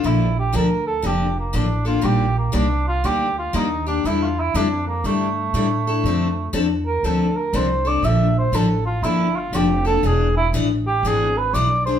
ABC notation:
X:1
M:4/4
L:1/8
Q:"Swing" 1/4=120
K:Bblyd
V:1 name="Cor anglais"
E G B A G B, D F | G B, D F G F _E D | (3E F E D B, A,4- | A,2 z B A B c d |
e c A F E F G A | ^G E z =G ^G =B d c |]
V:2 name="Steel-string acoustic guitar"
[D,F,B,DA] z [D,F,B,DA] z [D,F,B,DA] z [D,F,B,DA] [B,DA] | [_E,G,B,DG] z [E,G,B,DG] z [E,G,B,DG] z [E,G,B,DG] [B,DG] | [D,G,DEA] z [D,G,DEA] z [D,G,DEA] z [D,G,DEA] [DEA] | [D,F,CDA] z [D,F,CDA] z [D,F,CDA] z [D,F,CDA] [CDA] |
[D,F,B,DA] z [D,F,B,DA] z [D,F,B,DA] z [D,F,B,DA] [B,DA] | [E,=B,D^G] z [E,B,DG] z [E,B,DG] z [E,B,DG] [B,DG] |]
V:3 name="Upright bass" clef=bass
B,,,2 D,,2 F,,,2 A,,,2 | B,,,2 C,,2 D,,2 _E,,2 | E,,2 F,,2 G,,2 A,,2 | F,,2 E,,2 D,,2 C,,2 |
B,,,2 A,,,2 G,,,2 F,,,2 | E,,,2 A,,,2 ^G,,,2 =B,,,2 |]